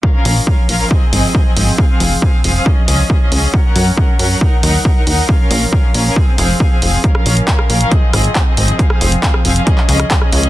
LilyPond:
<<
  \new Staff \with { instrumentName = "String section" } { \time 4/4 \key bes \minor \tempo 4 = 137 <f des' bes' f''>16 <f des' bes' f''>8 r16 <f des' bes' f''>8 <f des' bes' f''>16 <f des' bes' f''>16 <f c' aes' ees''>8 <f c' aes' ees''>8 <f c' aes' ees''>16 <f c' aes' ees''>16 <f c' aes' ees''>8 | <f c' aes' f''>16 <f c' aes' f''>8 r16 <f c' aes' f''>8 <f c' aes' f''>16 <f c' aes' f''>16 <f des' aes' ees''>8 <f des' aes' ees''>8 <f des' aes' ees''>16 <f des' aes' ees''>16 <f des' aes' ees''>8 | <ges des' bes' ges''>16 <ges des' bes' ges''>8 r16 <ges des' bes' ges''>8 <ges des' bes' ges''>16 <ges des' bes' ges''>16 <ges ees' bes' ges''>8 <ges ees' bes' ges''>8 <ges ees' bes' ges''>16 <ges ees' bes' ges''>16 <ges ees' bes' ges''>8 | <f des' bes' f''>16 <f des' bes' f''>8 r16 <f des' bes' f''>8 <f des' bes' f''>16 <f des' bes' f''>16 <f c' aes' f''>8 <f c' aes' f''>8 <f c' aes' f''>16 <f c' aes' f''>16 <f c' aes' f''>8 |
<f des' bes' f''>16 <f des' bes' f''>8 r16 <f des' bes' f''>8 <f des' bes' f''>16 <f des' bes' f''>16 <f c' aes' ees''>8 <f c' aes' ees''>8 <f c' aes' ees''>16 <f c' aes' ees''>16 <f c' aes' ees''>8 | <f c' aes' f''>16 <f c' aes' f''>8 r16 <f c' aes' f''>8 <f c' aes' f''>16 <f c' aes' f''>16 <f des' aes' ees''>8 <f des' aes' ees''>8 <f des' aes' ees''>16 <f des' aes' ees''>16 <f des' aes' ees''>8 | }
  \new Staff \with { instrumentName = "Analog synth bass" } { \clef bass \time 4/4 \key bes \minor r8 bes,,8 r8 bes,,8 r8 aes,,8 r8 aes,,8 | r8 f,,8 r8 f,,8 r8 des,8 r8 des,8 | r8 ges,8 r8 ges,8 r8 ees,8 r8 ees,8 | r8 bes,,8 r8 bes,,8 r8 f,,8 r8 f,,8 |
r8 bes,,8 r8 bes,,8 r8 aes,,8 r8 aes,,8 | r8 f,,8 r8 f,,8 r8 des,8 r8 des,8 | }
  \new DrumStaff \with { instrumentName = "Drums" } \drummode { \time 4/4 bd8 hho8 bd8 hho8 bd8 hho8 bd8 hho8 | bd8 hho8 bd8 hho8 bd8 hho8 bd8 hho8 | bd8 hho8 bd8 hho8 bd8 hho8 bd8 hho8 | bd8 hho8 bd8 hho8 bd8 hho8 bd8 hho8 |
<hh bd>16 ss16 hho16 hh16 <hc hh bd>16 ss16 hho16 hh16 <hh bd>8 <hho ss>16 hh16 <hc hh bd>8 hho16 hh16 | <hh bd>16 ss16 hho16 hh16 <hc hh bd>16 ss16 hho16 hh16 <hh bd>16 hc16 hho16 <hh ss>16 <hc hh bd>16 ss16 hho16 hh16 | }
>>